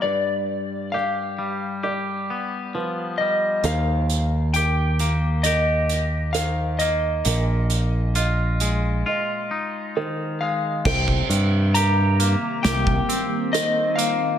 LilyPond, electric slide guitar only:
\new Staff \with { instrumentName = "Electric slide guitar" } { \time 4/4 \key c \minor \tempo 4 = 67 d''4 f''2~ f''8 ees''8 | f''4 g''4 ees''4 f''8 ees''8~ | ees''2. r8 f''8 | g''4 bes''4 g''4 ees''8 f''8 | }